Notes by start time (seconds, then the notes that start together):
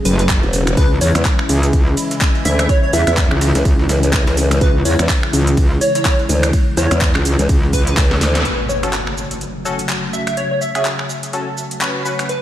Already playing: C#3 F#3 A3 G#4
0.05 F#1 B4, open hi-hat, ride, shaker
0.19 B4, snare, closed hi-hat, shaker
0.29 kick, snare, clap, closed hi-hat, ride, shaker
0.43 E1, ride
0.53 open hi-hat, ride, shaker
0.67 finger snap, closed hi-hat, shaker
0.77 C#2 E3 G#3 E4 B4, kick, closed hi-hat, ride, shaker
1.01 E2 C#5, open hi-hat, shaker
1.15 E2, finger snap, closed hi-hat, shaker
1.25 kick, snare, clap, closed hi-hat, ride, shaker
1.39 finger snap
1.49 C#2, open hi-hat, ride, shaker
1.63 closed hi-hat, shaker
1.73 kick, closed hi-hat, ride, shaker
1.87 snare
1.97 open hi-hat, ride, shaker
2.11 snare, closed hi-hat, shaker
2.21 kick, snare, clap, closed hi-hat, ride, shaker
2.35 ride
2.45 D2 E5, open hi-hat, ride, shaker
2.59 E5, finger snap, closed hi-hat, ride, shaker
2.69 C#5, kick, closed hi-hat, ride, shaker
2.83 C#5
2.93 E2 E5, open hi-hat, ride, shaker
3.07 E2 E5, finger snap, closed hi-hat, shaker
3.17 kick, snare, clap, closed hi-hat, ride, shaker
3.31 C#2, finger snap
3.41 snare, open hi-hat, ride, shaker
3.55 C#2, snare, closed hi-hat, ride, shaker
3.65 C#2, kick, closed hi-hat, ride, shaker
3.79 snare
3.89 C#2, snare, open hi-hat, ride, shaker
4.03 snare, closed hi-hat, shaker
4.13 kick, clap, closed hi-hat, ride, shaker
4.27 C#2, snare, ride
4.37 snare, open hi-hat, shaker
4.51 finger snap, closed hi-hat, ride, shaker
4.61 C#2 B4, kick, closed hi-hat, ride, shaker
4.85 E2 C#5, open hi-hat, shaker
4.99 E2, finger snap, closed hi-hat, shaker
5.09 kick, snare, clap, closed hi-hat, ride, shaker
5.23 finger snap
5.33 C#2, open hi-hat, ride, shaker
5.47 closed hi-hat, shaker
5.57 kick, closed hi-hat, ride, shaker
5.71 snare
5.81 C#5, open hi-hat, ride, shaker
5.95 C#5, snare, closed hi-hat, shaker
6.05 C#5, kick, snare, clap, closed hi-hat, ride, shaker
6.19 ride
6.29 D2, open hi-hat, ride, shaker
6.43 finger snap, closed hi-hat, ride, shaker
6.53 kick, closed hi-hat, ride, shaker
6.77 E2 C#5, open hi-hat, ride, shaker
6.91 E2, finger snap, closed hi-hat, shaker
7.01 kick, snare, clap, closed hi-hat, ride, shaker
7.15 C#2, finger snap, clap
7.25 open hi-hat, ride, shaker
7.39 C#2, snare, closed hi-hat, shaker
7.49 C#2, kick, closed hi-hat, ride, shaker
7.63 snare
7.73 B4, kick, open hi-hat, ride, shaker
7.87 B4, snare, closed hi-hat, shaker
7.97 C#2, kick, snare, clap, closed hi-hat, ride, shaker
8.11 snare
8.21 D2, snare, open hi-hat, ride, shaker
8.35 snare, closed hi-hat, shaker
8.45 C#3 F#3 A3 F#4 B4, closed hi-hat, impact, shaker
8.69 C#5, shaker
8.83 C#4 F#4 A4, finger snap, closed hi-hat, shaker
8.93 clap, closed hi-hat, shaker
9.07 finger snap
9.18 shaker
9.31 closed hi-hat, shaker
9.41 closed hi-hat, shaker
9.65 C#4 F#4 A4, shaker
9.79 closed hi-hat, shaker
9.89 clap, closed hi-hat, shaker
10.13 E5, shaker
10.27 E5, finger snap, closed hi-hat, shaker
10.37 C#5, closed hi-hat, shaker
10.51 C#5
10.61 E5, shaker
10.75 C#4 F#4 G#4 E5, finger snap, closed hi-hat, shaker
10.85 clap, closed hi-hat, shaker
10.99 finger snap
11.10 shaker
11.23 closed hi-hat, shaker
11.33 C#4 F#4 A4, closed hi-hat, shaker
11.58 shaker
11.71 closed hi-hat, shaker
11.81 C#4 F#4 B4, clap, closed hi-hat, shaker
12.05 C#4 F#4 B4, shaker
12.19 finger snap, closed hi-hat, shaker
12.29 B4, closed hi-hat, riser, shaker